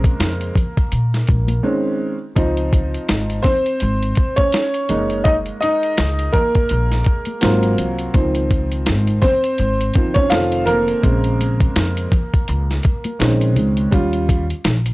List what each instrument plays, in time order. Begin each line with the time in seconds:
Already playing: upright piano C#3 G#3 A#3 C4 A#4
0.03 kick, closed hi-hat, shaker
0.19 upright bass F2, snare, closed hi-hat, shaker
0.40 closed hi-hat, shaker
0.55 kick, closed hi-hat, low conga, shaker
0.76 kick, closed hi-hat, shaker
0.92 upright bass A#2, closed hi-hat, shaker
1.12 snare, closed hi-hat, shaker
1.27 upright bass A#1, kick, closed hi-hat, shaker
1.48 closed hi-hat, high conga, shaker
1.63 upright piano D#3 G#3 C4 C#4
2.36 upright bass C#2, upright piano F3 C4 D#4, kick, closed hi-hat, shaker
2.57 closed hi-hat, shaker
2.73 kick, closed hi-hat, shaker
2.94 closed hi-hat, shaker
3.09 upright bass G#1, snare, closed hi-hat, shaker
3.29 closed hi-hat, shaker
3.43 upright piano C4 C5, kick, snare, closed hi-hat, low conga, shaker
3.66 closed hi-hat, shaker
3.80 upright bass G#1, closed hi-hat, shaker
4.03 closed hi-hat, shaker
4.15 kick, closed hi-hat, shaker
4.36 upright piano C#4 C#5, kick, closed hi-hat, high conga, shaker
4.52 snare, closed hi-hat, shaker
4.74 closed hi-hat, shaker
4.89 upright bass F#1, upright piano G#3 A#3 D#4, closed hi-hat, low conga, shaker
5.10 closed hi-hat, shaker
5.24 upright piano D#4 D#5, kick, closed hi-hat, shaker
5.46 closed hi-hat, shaker
5.61 upright piano D#4 D#5, closed hi-hat, shaker
5.82 closed hi-hat, shaker
5.98 upright bass C#2, snare, closed hi-hat, shaker
6.18 closed hi-hat, shaker
6.32 upright piano A#3 A#4, kick, closed hi-hat, low conga, shaker
6.55 kick, closed hi-hat, shaker
6.69 upright bass A#1, closed hi-hat, shaker
6.91 snare, closed hi-hat, shaker
7.04 kick, closed hi-hat, shaker
7.25 closed hi-hat, high conga, shaker
7.41 upright bass G#1, upright piano F#3 A#3 C4 F4, snare, closed hi-hat, shaker
7.63 closed hi-hat, shaker
7.78 upright bass C2, closed hi-hat, low conga, shaker
7.99 closed hi-hat, shaker
8.14 upright bass C#2, upright piano D#3 F3 C4, kick, closed hi-hat, shaker
8.35 closed hi-hat, shaker
8.51 kick, closed hi-hat, shaker
8.71 closed hi-hat, shaker
8.86 upright bass G#1, snare, closed hi-hat, shaker
9.07 closed hi-hat, shaker
9.22 upright piano C4 C5, kick, snare, closed hi-hat, low conga, shaker
9.44 closed hi-hat, shaker
9.58 upright bass G#1, closed hi-hat, shaker
9.80 closed hi-hat, shaker
9.94 upright piano D#3 F3 C4, kick, closed hi-hat, shaker
10.14 upright piano C#4 C#5, kick, closed hi-hat, high conga, shaker
10.30 upright bass F1, upright piano D#3 C4 F4 A4 F5, snare, closed hi-hat, shaker
10.52 closed hi-hat, shaker
10.66 upright piano A#3 A#4, closed hi-hat, low conga, shaker
10.88 closed hi-hat, shaker
11.02 upright bass A#1, upright piano C#3 G#3 C4, kick, closed hi-hat, shaker
11.24 closed hi-hat, shaker
11.41 closed hi-hat, high conga, shaker
11.60 kick, closed hi-hat, shaker
11.76 upright bass F2, snare, closed hi-hat, shaker
11.97 closed hi-hat, shaker
12.12 kick, closed hi-hat, low conga, shaker
12.33 kick, closed hi-hat, shaker
12.48 upright bass C#2, closed hi-hat, shaker
12.69 snare, closed hi-hat, shaker
12.83 kick, closed hi-hat, shaker
13.04 closed hi-hat, high conga, shaker
13.19 upright bass A#1, upright piano D#3 G#3 C4 C#4, snare, closed hi-hat, shaker
13.41 closed hi-hat, shaker
13.56 upright bass C#2, closed hi-hat, high conga, low conga, shaker
13.77 closed hi-hat, shaker
13.91 upright bass D#2, upright piano G3 C#4 F4, kick, closed hi-hat, shaker
14.13 closed hi-hat, shaker
14.29 kick, closed hi-hat, shaker
14.50 closed hi-hat, shaker
14.64 upright bass A#1, snare, closed hi-hat, low conga, shaker
14.86 closed hi-hat, shaker